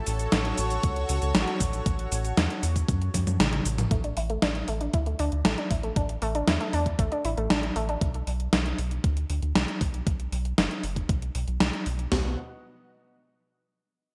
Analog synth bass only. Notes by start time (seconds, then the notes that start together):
0.07 A1
0.33 A1
0.58 A1
0.84 C#2
1.09 C#2
1.22 C#2
1.35 A1
1.60 A1
1.86 A1
2.12 A1
2.37 E2
2.63 E2
2.89 F#2
3.14 F#2
3.27 F#2
3.40 A1
3.66 A1
3.91 A1
4.17 A1
4.42 A1
4.68 A1
4.94 D2
5.19 D2
5.32 D2
5.45 A1
5.71 A1
5.96 A1
6.22 A1
6.48 E2
6.73 E2
6.99 A1
7.25 A1
7.37 A1
7.50 A1
7.76 A1
8.02 B1
8.27 B1
8.53 B1
8.78 B1
9.04 D2
9.30 D2
9.42 D2
9.55 B1
9.81 B1
10.07 B1
10.32 B1
10.58 F#1
10.84 F#1
11.09 B1
11.35 B1
11.48 B1
11.61 B1
11.86 B1
12.12 B1